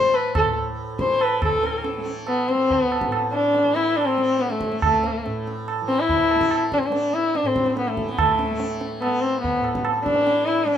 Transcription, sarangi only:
Already playing: C5
0.15 B4
0.37 A4
1.00 C5
1.23 B4
1.44 A4
2.29 B3
2.49 C4
2.72 B3
3.32 D4
3.75 E4
3.96 D4
4.06 C4
4.41 B3
4.52 A3
4.85 A3
5.88 C4
5.99 E4
6.73 D4
6.79 C4
6.85 D4
7.14 E4
7.36 D4
7.47 C4
7.78 B3
7.88 A3
8.12 B3
8.19 A3
9.01 B3
9.21 C4
9.41 B3
10.04 D4
10.46 E4
10.65 D4

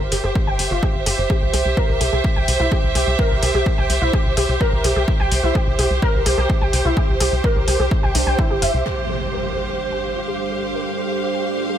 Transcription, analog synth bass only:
0.00 G1
0.12 G1
0.24 G1
0.47 G1
0.59 G1
0.71 G1
0.95 G1
1.06 G1
1.18 G1
1.42 C2
1.54 C2
1.66 C2
1.89 C2
2.01 C2
2.13 C2
2.36 C2
2.48 C2
2.60 C2
2.84 C2
2.95 C2
3.07 C2
3.31 C2
3.43 C2
3.54 C2
3.78 C2
3.90 C2
4.02 C2
4.25 C2
4.37 C2
4.49 C2
4.73 C2
4.84 C2
4.96 C2
5.20 C2
5.31 C2
5.43 C2
5.67 C2
5.79 C2
5.91 C2
6.14 C2
6.26 C2
6.38 C2
6.62 C2
6.73 C2
6.85 C2
7.09 C2
7.20 C2
7.32 C2
7.56 C2
7.68 C2
7.80 C2
8.03 C2
8.15 C2
8.27 C2
8.50 G1
8.62 G1
8.74 C2

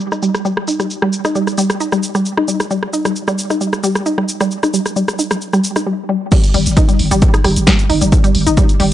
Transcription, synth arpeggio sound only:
0.12 D#4
0.23 G3
0.45 G3
0.68 D#4
0.80 G3
1.02 G3
1.25 D#4
1.35 G3
1.58 G3
1.80 D#4
1.92 G3
2.15 G3
2.37 D#4
2.48 G3
2.71 G3
2.93 D#4
3.05 G3
3.28 G3
3.50 D#4
3.61 G3
3.83 G3
4.06 D#4
4.18 G3
4.40 G3
4.63 D#4
4.74 G3
4.96 G3
5.19 D#4
5.31 G3
5.53 G3
5.76 D#4
5.86 G3
6.09 G3
6.32 G3
6.54 G3
6.77 D#4
6.89 G3
7.11 G3
7.34 D#4
7.44 G3
7.67 G3
7.90 D#4
8.01 G3
8.24 G3
8.47 D#4
8.57 G3
8.80 G3

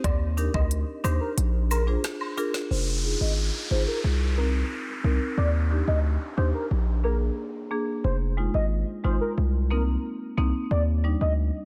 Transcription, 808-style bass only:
0.04 D#2
0.54 D2
1.04 D#2
1.37 A#1
2.71 F1
3.21 G#1
3.71 G#1
4.04 C2
5.04 C2
5.38 D#2
5.88 D2
6.38 D#2
6.71 A#1
8.04 F1
8.54 G#1
9.04 G#1
9.38 C2
10.38 C2
10.71 D#2
11.21 D2

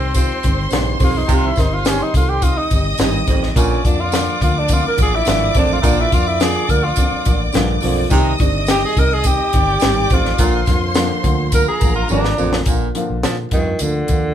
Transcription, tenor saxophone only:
Already playing: C4
0.16 C4
1.04 F4
1.17 D#4
1.33 F4
1.47 E4
1.60 D#4
1.74 F4
1.88 C#4
2.02 D#4
2.16 F4
2.30 G4
2.43 F4
2.57 D#4
3.57 C#4
3.86 D4
4.00 F4
4.43 F4
4.58 D4
4.73 F4
4.88 A#4
5.02 G#4
5.15 E4
5.58 D4
5.73 F4
5.81 D4 E4
6.00 E4
6.13 F4
6.27 E4
6.41 G#4
6.70 A#4
6.84 F4
8.70 G4
8.85 G#4
8.99 A#4
9.13 G#4
9.27 G4
10.14 F4
11.54 A#4
11.68 G#4
11.95 F4
12.11 D4
13.24 F3
13.53 D#3
13.82 D3

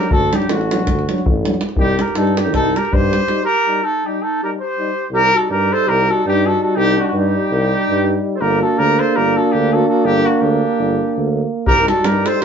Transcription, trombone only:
0.32 F#3
0.70 F#3
1.09 F#3
1.46 F#3
1.77 G3
2.16 G3
2.54 G3
2.93 G3
3.28 G3
3.66 G3
4.06 G3
4.44 G3
4.78 G3
5.11 G3
8.40 A#3
11.68 G3

